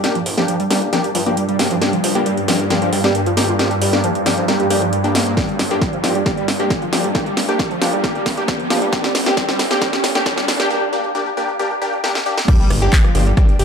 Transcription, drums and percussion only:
0.04 snare medium
0.04 closed hi-hat medium
0.15 closed hi-hat medium
0.26 open hi-hat loud
0.38 snare soft
0.48 closed hi-hat medium
0.60 closed hi-hat medium
0.71 snare medium
0.71 open hi-hat loud
0.82 closed hi-hat medium
0.93 snare medium
0.93 closed hi-hat medium
1.04 closed hi-hat medium
1.15 open hi-hat loud
1.26 closed hi-hat medium
1.37 closed hi-hat medium
1.49 closed hi-hat medium
1.59 snare medium
1.59 open hi-hat loud
1.71 closed hi-hat medium
1.82 snare medium
1.82 closed hi-hat medium
1.93 closed hi-hat medium
2.04 open hi-hat loud
2.15 closed hi-hat medium
2.26 closed hi-hat medium
2.37 closed hi-hat medium
2.48 snare medium
2.48 open hi-hat loud
2.60 closed hi-hat medium
2.70 snare medium
2.70 closed hi-hat medium
2.82 closed hi-hat medium
2.93 open hi-hat loud
3.04 snare medium
3.04 closed hi-hat medium
3.15 closed hi-hat medium
3.26 closed hi-hat medium
3.37 snare medium
3.37 open hi-hat loud
3.59 snare medium
3.59 closed hi-hat medium
3.71 closed hi-hat soft
3.82 open hi-hat loud
3.93 snare medium
4.04 closed hi-hat medium
4.15 closed hi-hat medium
4.26 snare medium
4.26 open hi-hat loud
4.38 closed hi-hat medium
4.48 snare medium
4.48 closed hi-hat medium
4.60 closed hi-hat medium
4.70 open hi-hat loud
4.82 closed hi-hat medium
4.93 closed hi-hat medium
5.04 closed hi-hat medium
5.15 snare medium
5.15 open hi-hat loud
5.27 closed hi-hat medium
5.37 kick loud
5.37 snare medium
5.37 closed hi-hat medium
5.49 closed hi-hat soft
5.59 snare medium
5.59 open hi-hat loud
5.71 closed hi-hat medium
5.82 kick loud
5.82 snare medium
5.82 closed hi-hat medium
5.93 closed hi-hat soft
6.04 snare medium
6.04 open hi-hat loud
6.15 closed hi-hat medium
6.26 kick loud
6.26 snare medium
6.26 closed hi-hat medium
6.38 closed hi-hat medium
6.48 snare medium
6.48 open hi-hat loud
6.60 closed hi-hat medium
6.70 kick loud
6.70 snare medium
6.70 closed hi-hat medium
6.82 closed hi-hat soft
6.93 snare medium
6.93 open hi-hat loud
7.04 closed hi-hat medium
7.15 kick loud
7.15 snare medium
7.15 closed hi-hat medium
7.26 closed hi-hat soft
7.37 snare medium
7.37 open hi-hat loud
7.49 closed hi-hat medium
7.59 kick loud
7.59 snare medium
7.59 closed hi-hat medium
7.71 closed hi-hat medium
7.82 snare medium
7.82 open hi-hat loud
7.93 closed hi-hat medium
8.04 kick loud
8.04 snare medium
8.04 closed hi-hat medium
8.15 closed hi-hat medium
8.26 kick medium
8.26 snare medium
8.26 open hi-hat loud
8.37 closed hi-hat medium
8.48 kick loud
8.48 snare medium
8.48 closed hi-hat medium
8.60 closed hi-hat soft
8.70 snare medium
8.70 open hi-hat loud
8.82 closed hi-hat medium
8.93 kick loud
8.93 snare medium
8.93 closed hi-hat medium
9.04 snare medium
9.04 closed hi-hat medium
9.15 snare loud
9.15 open hi-hat loud
9.26 snare medium
9.26 closed hi-hat medium
9.37 kick loud
9.37 snare medium
9.37 closed hi-hat medium
9.49 snare medium
9.49 closed hi-hat medium
9.59 snare loud
9.59 open hi-hat loud
9.71 snare medium
9.71 closed hi-hat medium
9.82 kick loud
9.82 snare medium
9.82 closed hi-hat medium
9.93 snare medium
9.93 closed hi-hat medium
10.04 snare loud
10.04 open hi-hat loud
10.15 snare medium
10.26 kick loud
10.26 snare loud
10.26 closed hi-hat medium
10.38 snare medium
10.38 closed hi-hat medium
10.48 snare loud
10.48 open hi-hat loud
10.60 snare medium
10.60 closed hi-hat medium
12.04 snare medium
12.15 snare medium
12.38 snare medium
12.48 kick loud
12.48 closed hi-hat medium
12.48 crash loud
12.60 closed hi-hat medium
12.70 cross-stick medium
12.70 open hi-hat loud
12.93 kick loud
12.93 clap loud
12.93 closed hi-hat medium
13.04 cross-stick medium
13.04 closed hi-hat medium
13.15 open hi-hat loud
13.27 closed hi-hat medium
13.37 kick loud
13.37 cross-stick medium
13.37 closed hi-hat medium
13.49 closed hi-hat medium
13.59 open hi-hat loud

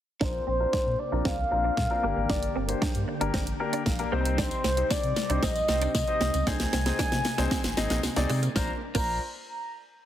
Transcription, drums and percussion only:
0.21 kick loud
0.21 snare medium
0.73 kick loud
0.73 snare medium
1.25 kick loud
1.25 snare medium
1.77 kick loud
1.77 snare medium
2.30 kick loud
2.30 snare medium
2.43 closed hi-hat medium
2.69 closed hi-hat medium
2.82 kick loud
2.82 snare medium
2.95 closed hi-hat medium
3.21 closed hi-hat medium
3.34 kick loud
3.34 snare medium
3.47 closed hi-hat medium
3.73 closed hi-hat medium
3.86 kick loud
3.86 snare medium
3.99 closed hi-hat soft
4.25 closed hi-hat medium
4.38 kick loud
4.38 snare medium
4.38 tambourine soft
4.51 closed hi-hat medium
4.51 tambourine soft
4.64 snare medium
4.64 tambourine medium
4.77 closed hi-hat medium
4.90 kick loud
4.90 snare medium
4.90 tambourine medium
5.03 closed hi-hat medium
5.16 snare medium
5.16 tambourine soft
5.30 closed hi-hat medium
5.43 kick loud
5.43 snare medium
5.43 tambourine medium
5.56 closed hi-hat medium
5.56 tambourine soft
5.68 snare loud
5.68 tambourine medium
5.82 closed hi-hat medium
5.82 tambourine soft
5.95 kick loud
5.95 snare loud
5.95 tambourine medium
6.08 closed hi-hat medium
6.21 snare loud
6.21 tambourine soft
6.34 closed hi-hat medium
6.34 tambourine soft
6.47 kick loud
6.47 snare loud
6.47 tambourine soft
6.60 snare loud
6.60 closed hi-hat medium
6.60 tambourine soft
6.73 snare loud
6.73 open hi-hat medium
6.73 tambourine medium
6.86 snare loud
6.86 closed hi-hat medium
6.99 kick loud
6.99 snare loud
6.99 tambourine medium
7.12 snare loud
7.12 closed hi-hat medium
7.25 snare loud
7.25 open hi-hat medium
7.25 tambourine medium
7.38 snare loud
7.38 closed hi-hat medium
7.51 kick loud
7.51 snare loud
7.51 tambourine medium
7.64 snare loud
7.64 closed hi-hat medium
7.77 snare loud
7.77 open hi-hat medium
7.77 tambourine medium
7.90 snare loud
7.90 closed hi-hat medium
7.90 tambourine soft
8.03 snare loud
8.03 tambourine medium
8.16 snare loud
8.16 closed hi-hat medium
8.30 open hi-hat medium
8.30 tambourine soft
8.43 closed hi-hat medium
8.43 tambourine soft
8.56 kick loud
8.56 snare medium
8.56 tambourine medium
8.95 kick loud
8.95 crash medium
8.95 tambourine medium

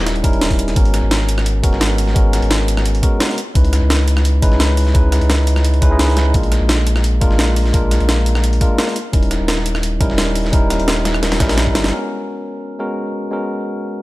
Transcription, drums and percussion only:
0.06 snare loud
0.06 closed hi-hat medium
0.16 closed hi-hat soft
0.24 kick loud
0.24 closed hi-hat medium
0.33 closed hi-hat soft
0.41 snare soft
0.41 snare loud
0.41 closed hi-hat medium
0.51 kick medium
0.51 snare soft
0.51 closed hi-hat medium
0.59 closed hi-hat soft
0.59 closed hi-hat medium
0.68 snare soft
0.68 closed hi-hat medium
0.76 kick loud
0.76 closed hi-hat medium
0.85 closed hi-hat soft
0.94 cross-stick soft
0.94 snare soft
0.94 closed hi-hat medium
1.11 snare loud
1.11 closed hi-hat medium
1.20 snare soft
1.28 closed hi-hat medium
1.28 closed hi-hat loud
1.38 cross-stick soft
1.38 snare soft
1.46 closed hi-hat medium
1.64 kick loud
1.64 closed hi-hat medium
1.73 snare soft
1.81 snare loud
1.81 closed hi-hat medium
1.98 closed hi-hat medium
1.98 open hi-hat medium
2.07 snare soft
2.16 kick loud
2.16 closed hi-hat medium
2.33 cross-stick soft
2.33 snare soft
2.33 closed hi-hat medium
2.42 closed hi-hat soft
2.51 snare loud
2.51 closed hi-hat medium
2.68 closed hi-hat medium
2.77 cross-stick soft
2.77 snare medium
2.86 closed hi-hat medium
2.95 closed hi-hat soft
3.03 kick loud
3.03 closed hi-hat medium
3.20 snare loud
3.20 closed hi-hat medium
3.30 snare soft
3.38 closed hi-hat medium
3.55 kick loud
3.55 closed hi-hat medium
3.65 closed hi-hat soft
3.73 cross-stick soft
3.73 snare soft
3.73 closed hi-hat medium
3.90 snare loud
3.90 closed hi-hat medium
3.99 snare soft
4.08 closed hi-hat medium
4.17 cross-stick medium
4.17 snare soft
4.25 closed hi-hat medium
4.42 kick loud
4.42 closed hi-hat medium
4.52 snare soft
4.60 snare loud
4.60 closed hi-hat medium
4.77 closed hi-hat medium
4.77 open hi-hat medium
4.87 snare soft
4.95 kick loud
4.95 closed hi-hat medium
5.12 cross-stick soft
5.12 snare medium
5.12 closed hi-hat medium
5.21 closed hi-hat soft
5.30 snare loud
5.30 closed hi-hat medium
5.47 closed hi-hat medium
5.56 cross-stick soft
5.56 snare medium
5.64 closed hi-hat medium
5.74 closed hi-hat soft
5.82 kick loud
5.82 closed hi-hat medium
5.99 snare loud
5.99 closed hi-hat medium
6.08 snare soft
6.17 snare loud
6.17 closed hi-hat medium
6.34 kick loud
6.34 closed hi-hat medium
6.43 closed hi-hat soft
6.52 cross-stick soft
6.52 snare soft
6.52 closed hi-hat medium
6.69 snare loud
6.69 closed hi-hat medium
6.78 snare soft
6.87 closed hi-hat medium
6.96 cross-stick soft
6.96 snare soft
7.04 closed hi-hat medium
7.21 kick loud
7.21 closed hi-hat medium
7.31 snare soft
7.39 snare loud
7.39 closed hi-hat medium
7.56 closed hi-hat medium
7.56 open hi-hat medium
7.66 snare soft
7.74 kick loud
7.74 closed hi-hat medium
7.91 cross-stick soft
7.91 snare soft
7.91 closed hi-hat medium
8.00 closed hi-hat soft
8.09 snare loud
8.09 closed hi-hat medium
8.26 closed hi-hat medium
8.35 cross-stick soft
8.35 snare medium
8.44 closed hi-hat medium
8.53 closed hi-hat soft
8.61 kick loud
8.61 closed hi-hat medium
8.79 snare loud
8.79 closed hi-hat medium
8.88 snare soft
8.96 closed hi-hat medium
9.13 kick loud
9.13 closed hi-hat medium
9.23 closed hi-hat soft
9.31 cross-stick soft
9.31 snare soft
9.31 closed hi-hat medium
9.48 snare loud
9.48 closed hi-hat medium
9.57 snare soft
9.66 closed hi-hat medium
9.75 cross-stick soft
9.75 snare soft
9.83 closed hi-hat medium
10.01 kick loud
10.01 closed hi-hat medium
10.10 snare soft
10.18 snare loud
10.18 closed hi-hat medium
10.35 closed hi-hat medium
10.35 open hi-hat medium
10.45 snare soft
10.53 kick loud
10.53 closed hi-hat medium
10.70 cross-stick soft
10.70 snare medium
10.70 closed hi-hat medium
10.70 closed hi-hat loud
10.80 closed hi-hat soft
10.88 snare loud
10.88 closed hi-hat medium
11.05 snare loud
11.05 closed hi-hat medium
11.14 cross-stick soft
11.23 snare loud
11.23 snare medium
11.23 closed hi-hat medium
11.32 snare loud
11.32 snare medium
11.32 closed hi-hat medium
11.40 kick loud
11.40 snare loud
11.40 closed hi-hat loud
11.40 closed hi-hat medium
11.49 snare medium
11.49 snare loud
11.49 closed hi-hat medium
11.58 snare medium
11.58 snare loud
11.58 closed hi-hat medium
11.67 kick medium
11.75 snare loud
11.75 closed hi-hat medium
11.84 snare medium
11.84 closed hi-hat medium
11.88 snare medium
11.88 closed hi-hat medium

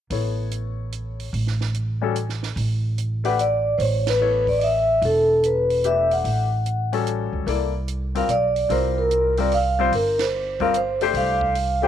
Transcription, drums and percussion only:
0.10 open hi-hat soft
0.51 closed hi-hat soft
0.92 closed hi-hat soft
1.20 open hi-hat soft
1.34 open hi-hat soft
1.47 snare soft
1.61 snare soft
1.75 closed hi-hat soft
2.16 closed hi-hat soft
2.29 snare soft
2.43 snare soft
2.57 open hi-hat soft
2.98 closed hi-hat soft
3.25 open hi-hat soft
3.39 closed hi-hat soft
3.80 open hi-hat soft
4.07 snare medium
4.07 ride medium
4.47 kick soft
4.47 open hi-hat soft
4.61 open hi-hat soft
5.02 open hi-hat soft
5.43 closed hi-hat soft
5.70 open hi-hat soft
5.84 closed hi-hat soft
6.11 open hi-hat soft
6.25 open hi-hat soft
6.66 closed hi-hat soft
6.93 open hi-hat soft
7.07 closed hi-hat soft
7.47 open hi-hat soft
7.88 closed hi-hat soft
8.15 open hi-hat soft
8.29 closed hi-hat soft
8.56 open hi-hat soft
8.70 open hi-hat soft
9.11 closed hi-hat soft
9.37 open hi-hat soft
9.52 open hi-hat soft
9.93 open hi-hat soft
10.19 snare medium
10.19 ride medium
10.60 kick soft
10.60 open hi-hat soft
10.74 closed hi-hat soft
11.01 open hi-hat soft
11.14 open hi-hat soft
11.41 kick soft
11.55 open hi-hat soft

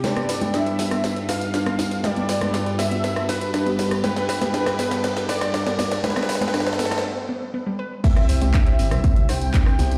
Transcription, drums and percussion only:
0.04 snare medium
0.04 closed hi-hat soft
0.04 tambourine soft
0.04 low conga medium
0.16 cross-stick medium
0.16 closed hi-hat soft
0.16 tambourine soft
0.29 snare medium
0.29 open hi-hat loud
0.29 tambourine medium
0.41 closed hi-hat soft
0.41 tambourine soft
0.41 low conga medium
0.54 cross-stick soft
0.54 snare medium
0.54 closed hi-hat soft
0.54 tambourine soft
0.66 closed hi-hat soft
0.66 tambourine soft
0.79 snare medium
0.79 open hi-hat medium
0.79 tambourine medium
0.91 cross-stick medium
0.91 closed hi-hat soft
0.91 tambourine soft
1.04 snare medium
1.04 closed hi-hat soft
1.04 tambourine soft
1.16 closed hi-hat soft
1.29 cross-stick soft
1.29 snare medium
1.29 open hi-hat loud
1.29 tambourine medium
1.29 high conga medium
1.41 closed hi-hat soft
1.41 tambourine soft
1.54 snare medium
1.54 closed hi-hat medium
1.54 tambourine soft
1.66 cross-stick medium
1.66 closed hi-hat soft
1.66 tambourine soft
1.79 snare medium
1.79 open hi-hat medium
1.79 tambourine medium
1.79 high conga medium
1.91 closed hi-hat soft
1.91 tambourine soft
2.04 cross-stick soft
2.04 snare medium
2.04 closed hi-hat soft
2.04 tambourine soft
2.04 low conga medium
2.16 closed hi-hat soft
2.16 tambourine soft
2.29 snare medium
2.29 open hi-hat loud
2.29 tambourine medium
2.41 cross-stick medium
2.41 closed hi-hat medium
2.41 tambourine soft
2.41 low conga medium
2.54 snare medium
2.54 closed hi-hat soft
2.54 tambourine soft
2.66 closed hi-hat soft
2.66 tambourine soft
2.79 cross-stick soft
2.79 snare medium
2.79 open hi-hat medium
2.79 tambourine medium
2.91 closed hi-hat medium
2.91 tambourine soft
3.04 snare medium
3.04 closed hi-hat medium
3.04 tambourine soft
3.16 cross-stick medium
3.16 closed hi-hat soft
3.16 tambourine soft
3.29 snare medium
3.29 open hi-hat loud
3.29 tambourine medium
3.29 high conga medium
3.41 closed hi-hat medium
3.41 tambourine soft
3.54 cross-stick soft
3.54 snare medium
3.54 closed hi-hat medium
3.54 tambourine soft
3.66 closed hi-hat soft
3.66 tambourine soft
3.79 snare medium
3.79 open hi-hat medium
3.79 tambourine medium
3.79 high conga medium
3.91 cross-stick medium
3.91 closed hi-hat medium
3.91 tambourine soft
4.04 snare medium
4.04 closed hi-hat medium
4.04 tambourine soft
4.04 low conga medium
4.16 snare medium
4.16 closed hi-hat soft
4.16 tambourine soft
4.29 cross-stick soft
4.29 snare medium
4.29 open hi-hat loud
4.29 tambourine medium
4.41 snare medium
4.41 closed hi-hat medium
4.41 tambourine soft
4.41 low conga medium
4.54 snare medium
4.54 closed hi-hat medium
4.54 tambourine soft
4.66 cross-stick medium
4.66 snare medium
4.66 closed hi-hat soft
4.66 tambourine soft
4.79 snare medium
4.79 open hi-hat medium
4.79 tambourine medium
4.91 snare medium
4.91 closed hi-hat medium
4.91 tambourine soft
5.04 cross-stick soft
5.04 snare medium
5.04 closed hi-hat medium
5.04 tambourine soft
5.17 snare medium
5.17 closed hi-hat soft
5.17 tambourine soft
5.29 snare loud
5.29 open hi-hat loud
5.29 tambourine medium
5.29 high conga medium
5.41 cross-stick medium
5.41 snare medium
5.41 closed hi-hat medium
5.41 tambourine soft
5.54 snare loud
5.54 closed hi-hat medium
5.54 tambourine soft
5.67 snare medium
5.67 closed hi-hat soft
5.67 tambourine soft
5.79 cross-stick soft
5.79 snare loud
5.79 open hi-hat medium
5.79 tambourine medium
5.79 high conga loud
5.91 snare medium
5.91 closed hi-hat medium
5.91 tambourine soft
6.04 snare loud
6.04 closed hi-hat medium
6.04 tambourine soft
6.04 low conga medium
6.10 snare medium
6.16 cross-stick medium
6.16 snare medium
6.16 closed hi-hat soft
6.16 tambourine soft
6.23 snare medium
6.29 snare loud
6.29 open hi-hat loud
6.29 tambourine medium
6.35 snare medium
6.41 snare medium
6.41 closed hi-hat medium
6.41 tambourine soft
6.41 low conga medium
6.48 snare medium
6.54 cross-stick soft
6.54 snare loud
6.54 closed hi-hat medium
6.54 tambourine soft
6.60 snare medium
6.67 snare medium
6.67 closed hi-hat soft
6.67 tambourine soft
6.73 snare medium
6.79 snare loud
6.79 open hi-hat medium
6.79 tambourine medium
6.85 snare medium
6.91 cross-stick medium
6.91 snare medium
6.91 closed hi-hat medium
6.91 tambourine soft
6.91 high conga medium
6.98 snare medium
8.04 kick loud
8.04 closed hi-hat medium
8.04 crash loud
8.04 tambourine soft
8.04 low conga medium
8.16 cross-stick medium
8.16 closed hi-hat soft
8.16 tambourine soft
8.29 open hi-hat loud
8.29 tambourine medium
8.41 closed hi-hat medium
8.41 tambourine soft
8.41 low conga medium
8.54 kick loud
8.54 cross-stick soft
8.54 clap loud
8.54 closed hi-hat medium
8.54 tambourine soft
8.67 closed hi-hat soft
8.67 tambourine soft
8.79 open hi-hat medium
8.79 tambourine medium
8.91 cross-stick medium
8.91 closed hi-hat medium
8.91 tambourine soft
9.04 kick loud
9.04 closed hi-hat medium
9.04 tambourine soft
9.16 closed hi-hat soft
9.16 tambourine soft
9.29 cross-stick soft
9.29 open hi-hat loud
9.29 tambourine medium
9.29 high conga medium
9.41 closed hi-hat medium
9.41 tambourine soft
9.54 kick loud
9.54 clap loud
9.54 closed hi-hat medium
9.54 tambourine soft
9.66 cross-stick medium
9.66 tambourine soft
9.79 open hi-hat medium
9.79 tambourine medium
9.79 high conga loud
9.92 closed hi-hat medium
9.92 tambourine soft

